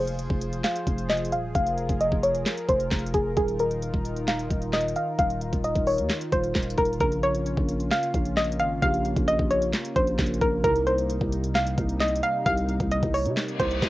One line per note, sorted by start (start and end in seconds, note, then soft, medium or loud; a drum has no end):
0.00 0.28 F1 loud
0.00 3.33 F3 medium
0.00 10.60 F4 medium
0.00 3.33 G#4 medium
0.00 0.60 C5 medium
0.00 1.53 C5 medium
0.07 closed hi-hat medium
0.19 closed hi-hat medium
0.30 0.63 F1 loud
0.30 kick medium
0.41 closed hi-hat medium
0.53 closed hi-hat medium
0.64 1.07 F5 medium
0.64 snare loud
0.64 clap medium
0.64 closed hi-hat medium
0.76 closed hi-hat medium
0.87 1.34 F1 loud
0.87 kick loud
0.87 closed hi-hat medium
0.98 closed hi-hat medium
1.10 1.31 D#5 medium
1.10 snare loud
1.10 clap medium
1.10 closed hi-hat soft
1.17 closed hi-hat medium
1.25 closed hi-hat medium
1.32 1.54 D#1 loud
1.32 1.53 F5 medium
1.32 closed hi-hat medium
1.55 1.88 F1 loud
1.55 6.97 A#4 medium
1.55 1.98 F5 loud
1.55 kick loud
1.55 closed hi-hat medium
1.67 closed hi-hat medium
1.78 closed hi-hat medium
1.89 2.11 F1 loud
1.89 kick medium
1.89 closed hi-hat medium
2.01 2.22 D#5 medium
2.01 closed hi-hat medium
2.12 2.45 F1 loud
2.12 kick medium
2.23 2.44 C#5 medium
2.23 closed hi-hat medium
2.35 closed hi-hat medium
2.46 snare loud
2.46 clap medium
2.46 closed hi-hat medium
2.58 closed hi-hat medium
2.69 2.91 F1 loud
2.69 3.12 C5 medium
2.69 kick loud
2.69 closed hi-hat medium
2.80 closed hi-hat medium
2.91 3.13 F1 loud
2.91 kick medium
2.91 snare loud
2.91 clap medium
2.91 closed hi-hat soft
2.99 closed hi-hat medium
3.07 closed hi-hat medium
3.14 3.36 F1 loud
3.14 3.35 G#4 medium
3.14 kick loud
3.14 closed hi-hat medium
3.37 3.91 D#1 loud
3.37 6.97 D#3 medium
3.37 6.97 D#4 medium
3.37 3.58 G#4 loud
3.37 kick loud
3.37 closed hi-hat medium
3.48 closed hi-hat medium
3.59 4.24 A#4 medium
3.59 closed hi-hat medium
3.71 closed hi-hat medium
3.82 closed hi-hat medium
3.94 4.48 D#1 loud
3.94 kick medium
4.05 closed hi-hat medium
4.16 closed hi-hat medium
4.28 4.71 F5 medium
4.28 snare loud
4.28 clap medium
4.28 closed hi-hat medium
4.39 closed hi-hat medium
4.50 4.94 D#1 loud
4.50 kick loud
4.50 closed hi-hat medium
4.62 closed hi-hat medium
4.73 4.94 D#5 medium
4.73 snare loud
4.73 clap medium
4.73 closed hi-hat soft
4.81 closed hi-hat medium
4.88 closed hi-hat medium
4.96 5.17 F5 medium
4.96 closed hi-hat medium
5.19 5.51 D#1 loud
5.19 5.61 F5 loud
5.19 kick loud
5.19 closed hi-hat medium
5.30 closed hi-hat medium
5.41 closed hi-hat medium
5.53 5.75 D#1 loud
5.53 kick medium
5.53 closed hi-hat medium
5.64 5.85 D#5 medium
5.64 closed hi-hat medium
5.76 6.00 D#1 loud
5.76 kick medium
5.76 closed hi-hat soft
5.87 6.08 C#5 medium
5.87 open hi-hat medium
5.98 6.09 D#2 loud
5.98 closed hi-hat medium
6.10 snare loud
6.10 clap medium
6.10 closed hi-hat medium
6.21 closed hi-hat medium
6.32 6.54 D#1 loud
6.32 6.75 C5 medium
6.32 kick loud
6.32 closed hi-hat medium
6.44 closed hi-hat medium
6.55 6.77 D#1 loud
6.55 kick loud
6.55 snare loud
6.55 clap medium
6.55 closed hi-hat soft
6.63 closed hi-hat medium
6.70 closed hi-hat medium
6.78 7.00 D#1 loud
6.78 6.99 A#4 medium
6.78 kick loud
6.78 closed hi-hat medium
6.85 closed hi-hat medium
6.93 closed hi-hat medium
6.99 7.55 A#1 loud
6.99 8.78 C#3 medium
6.99 8.78 A#3 medium
6.99 13.89 A#3 medium
6.99 10.61 C#4 medium
6.99 8.79 F4 medium
6.99 7.22 A#4 medium
6.99 8.79 A#4 medium
6.99 kick loud
6.99 closed hi-hat medium
7.12 closed hi-hat medium
7.23 7.87 C#5 medium
7.23 closed hi-hat medium
7.35 closed hi-hat medium
7.46 closed hi-hat medium
7.57 7.90 A#1 loud
7.57 kick medium
7.69 closed hi-hat medium
7.80 closed hi-hat medium
7.91 8.34 F5 medium
7.91 snare loud
7.91 clap medium
7.91 closed hi-hat medium
8.03 closed hi-hat medium
8.14 8.61 A#1 loud
8.14 kick loud
8.14 closed hi-hat medium
8.25 closed hi-hat medium
8.37 8.58 D#5 medium
8.37 snare loud
8.37 clap medium
8.37 closed hi-hat soft
8.44 closed hi-hat medium
8.52 closed hi-hat medium
8.59 8.81 G#1 loud
8.59 8.81 F5 medium
8.59 closed hi-hat medium
8.81 9.15 A#1 loud
8.81 10.15 C#3 medium
8.81 10.16 A#3 medium
8.81 10.16 F4 medium
8.81 10.17 G4 medium
8.81 9.25 F5 loud
8.81 kick loud
8.81 closed hi-hat medium
8.94 closed hi-hat medium
9.05 closed hi-hat medium
9.16 9.38 A#1 loud
9.16 kick loud
9.16 closed hi-hat medium
9.28 9.49 D#5 medium
9.28 closed hi-hat medium
9.39 9.72 A#1 loud
9.39 kick medium
9.51 9.72 C#5 medium
9.51 closed hi-hat medium
9.62 closed hi-hat medium
9.73 snare loud
9.73 clap medium
9.73 closed hi-hat medium
9.85 closed hi-hat medium
9.96 10.18 A#1 loud
9.96 10.39 C5 medium
9.96 kick loud
9.96 closed hi-hat medium
10.07 closed hi-hat medium
10.18 10.41 A#1 loud
10.18 10.64 C#3 medium
10.18 10.64 A#3 soft
10.18 10.64 F4 soft
10.18 10.64 A#4 medium
10.18 kick loud
10.18 snare loud
10.18 clap medium
10.18 closed hi-hat soft
10.26 closed hi-hat medium
10.34 closed hi-hat medium
10.41 10.63 A#1 loud
10.41 10.62 A#4 medium
10.41 kick medium
10.41 closed hi-hat medium
10.63 11.19 C2 loud
10.63 12.42 C3 medium
10.63 13.89 C3 medium
10.63 12.42 G3 medium
10.63 13.89 G3 medium
10.63 13.89 D#4 medium
10.63 12.43 D#4 medium
10.63 10.85 A#4 loud
10.63 12.43 A#4 medium
10.63 kick loud
10.63 closed hi-hat medium
10.76 closed hi-hat medium
10.87 11.51 C5 medium
10.87 closed hi-hat medium
10.98 closed hi-hat medium
11.10 closed hi-hat medium
11.21 11.76 C2 loud
11.21 kick medium
11.32 closed hi-hat medium
11.44 closed hi-hat medium
11.55 11.98 F5 medium
11.55 snare loud
11.55 clap medium
11.55 closed hi-hat medium
11.67 closed hi-hat medium
11.78 12.21 C2 loud
11.78 kick loud
11.78 closed hi-hat medium
11.89 closed hi-hat medium
12.00 12.22 D#5 medium
12.00 snare loud
12.00 clap medium
12.00 closed hi-hat soft
12.08 closed hi-hat medium
12.16 closed hi-hat medium
12.23 12.44 F5 medium
12.23 closed hi-hat medium
12.45 12.79 C2 loud
12.45 13.89 C3 medium
12.45 13.89 G3 medium
12.45 13.89 D#4 medium
12.45 13.89 G4 medium
12.45 12.89 F5 loud
12.45 kick loud
12.45 closed hi-hat medium
12.58 closed hi-hat medium
12.69 closed hi-hat medium
12.80 13.02 C2 loud
12.80 kick medium
12.80 closed hi-hat medium
12.91 13.13 D#5 medium
12.91 closed hi-hat medium
13.03 13.27 C2 loud
13.03 kick medium
13.03 closed hi-hat soft
13.14 13.35 C#5 medium
13.14 open hi-hat medium
13.25 13.36 C3 loud
13.25 closed hi-hat medium
13.37 snare loud
13.37 clap medium
13.37 closed hi-hat medium
13.37 reverse cymbal medium
13.48 closed hi-hat medium
13.60 13.81 C2 loud
13.60 13.89 C5 medium
13.60 kick loud
13.60 closed hi-hat medium
13.71 closed hi-hat medium
13.82 13.89 C2 loud
13.82 kick loud
13.82 snare loud
13.82 clap medium
13.82 closed hi-hat soft